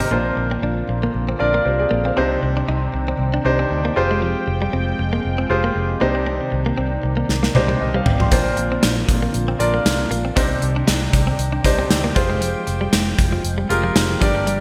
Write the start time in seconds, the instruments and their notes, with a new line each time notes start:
Already playing: grand piano C3 D#4 G4 A#4 C5 D5
0.00 clean electric guitar C4, closed hi-hat
0.10 fingered electric bass A#1, grand piano A#2 D4 F4 A#4 C5, analog synth pad D3 A#3 C4 F4, clean electric guitar A#3
0.37 fingered electric bass A#1, muted clean electric guitar stroke
0.51 clean electric guitar C4
0.62 fingered electric bass A#1, clean electric guitar D4
0.89 fingered electric bass A#1, muted clean electric guitar stroke
1.03 clean electric guitar A#3
1.15 fingered electric bass A#1
1.29 clean electric guitar C4
1.39 fingered electric bass A#1, grand piano D4 F4 A#4 D5, muted clean electric guitar stroke
1.54 clean electric guitar A#3
1.66 fingered electric bass C2, grand piano G4 C5, muted clean electric guitar stroke
1.79 grand piano G#4 D5
1.91 fingered electric bass A#1, clean electric guitar A#3
2.05 clean electric guitar C4, grand piano C5 F5
2.16 fingered electric bass C2, grand piano C3 D4 D#4 G4 C5, analog synth pad D#3 D5 G5, clean electric guitar C4
2.43 fingered electric bass C2, muted clean electric guitar stroke
2.57 clean electric guitar D4
2.68 fingered electric bass C2, clean electric guitar D#4
2.94 fingered electric bass C2, muted clean electric guitar stroke
3.08 clean electric guitar C4
3.19 fingered electric bass C2
3.34 clean electric guitar D4
3.45 fingered electric bass C2, grand piano D4 D#4 G4 C5, muted clean electric guitar stroke
3.59 clean electric guitar C4
3.71 fingered electric bass D2
3.85 clean electric guitar A#3
3.96 fingered electric bass F1, analog synth pad F3 G#3, grand piano F4 G4 G#4 C5, muted clean electric guitar stroke
4.11 clean electric guitar G#3
4.22 clean electric guitar F3
4.47 fingered electric bass F1, muted clean electric guitar stroke
4.62 clean electric guitar G3
4.73 fingered electric bass F1, clean electric guitar C4
4.99 fingered electric bass F1, muted clean electric guitar stroke
5.13 clean electric guitar A#3
5.25 fingered electric bass F1
5.38 clean electric guitar C4
5.50 fingered electric bass F1, grand piano F4 G4 G#4 C5, muted clean electric guitar stroke
5.64 clean electric guitar A#3
5.75 fingered electric bass F1, muted clean electric guitar stroke
6.00 fingered electric bass C2, grand piano C3 D4 D#4 G4 C5, analog synth pad D#3 D5, clean electric guitar A#3
6.15 clean electric guitar C4
6.26 clean electric guitar C4
6.52 fingered electric bass C2, muted clean electric guitar stroke
6.66 clean electric guitar A#3
6.78 fingered electric bass C2, clean electric guitar C4
7.03 fingered electric bass C2, muted clean electric guitar stroke
7.17 clean electric guitar A#3
7.29 fingered electric bass C2, snare
7.43 clean electric guitar A#3, snare
7.54 fingered electric bass C2, grand piano D4 D#4 G4 C5, muted clean electric guitar stroke, high tom
7.68 clean electric guitar G3, high tom
7.81 fingered electric bass C2, grand piano A#4 D#5
7.94 clean electric guitar G3, grand piano C5 F5
8.06 fingered electric bass G#1, grand piano D5 G5, muted clean electric guitar stroke, floor tom
8.20 clean electric guitar F3, grand piano G5 C6, floor tom
8.31 fingered electric bass A#1, grand piano A#2 D4 F4 A#4 C5, analog synth pad D3 A#3 F4, clean electric guitar A#3, kick, closed hi-hat, tambourine
8.57 fingered electric bass A#1, muted clean electric guitar stroke, closed hi-hat
8.72 clean electric guitar C4
8.83 fingered electric bass A#1, clean electric guitar D4, snare, closed hi-hat, tambourine
9.09 fingered electric bass A#1, muted clean electric guitar stroke, kick, closed hi-hat, tambourine
9.22 clean electric guitar A#3
9.34 fingered electric bass A#1, closed hi-hat, tambourine
9.48 clean electric guitar C4
9.59 fingered electric bass A#1, grand piano D4 F4 A#4 D5, muted clean electric guitar stroke, closed hi-hat, tambourine
9.74 clean electric guitar A#3
9.85 fingered electric bass C2, muted clean electric guitar stroke, snare, closed hi-hat, tambourine
10.11 fingered electric bass A#1, clean electric guitar A#3, closed hi-hat, tambourine
10.25 clean electric guitar C4
10.36 fingered electric bass C2, grand piano C3 D4 D#4 G4 C5, analog synth pad D#3 D5 G5, clean electric guitar C4, kick, closed hi-hat, tambourine
10.62 fingered electric bass C2, muted clean electric guitar stroke, closed hi-hat
10.76 clean electric guitar D4
10.87 fingered electric bass C2, clean electric guitar D#4, snare, closed hi-hat, tambourine
11.13 fingered electric bass C2, muted clean electric guitar stroke, kick, closed hi-hat, tambourine
11.27 clean electric guitar C4
11.38 fingered electric bass C2, closed hi-hat, tambourine
11.52 clean electric guitar D4
11.64 fingered electric bass C2, grand piano D4 D#4 G4 C5, muted clean electric guitar stroke, kick, closed hi-hat, tambourine
11.79 clean electric guitar C4
11.90 fingered electric bass D2, snare, closed hi-hat, tambourine
12.04 clean electric guitar A#3
12.15 fingered electric bass F1, analog synth pad F3 G#3, grand piano F4 G4 G#4 C5, muted clean electric guitar stroke, kick, closed hi-hat, tambourine
12.30 clean electric guitar G#3
12.41 clean electric guitar F3, closed hi-hat, tambourine
12.67 fingered electric bass F1, muted clean electric guitar stroke, closed hi-hat, tambourine
12.81 clean electric guitar G3
12.93 fingered electric bass F1, clean electric guitar G#3, snare, closed hi-hat, tambourine
13.18 fingered electric bass F1, muted clean electric guitar stroke, kick, closed hi-hat, tambourine
13.33 clean electric guitar F3
13.44 fingered electric bass F1, closed hi-hat, tambourine
13.58 clean electric guitar G3
13.69 fingered electric bass F1, grand piano F4 G4 G#4 A#4, muted clean electric guitar stroke, closed hi-hat, tambourine
13.84 clean electric guitar F3
13.95 fingered electric bass F1, muted clean electric guitar stroke, snare, closed hi-hat, tambourine
14.21 fingered electric bass G1, grand piano G2 D4 G4 A#4 D5, analog synth pad D3 G3 A#3, clean electric guitar F3, kick, closed hi-hat, tambourine
14.35 clean electric guitar G3
14.47 clean electric guitar G3, closed hi-hat, tambourine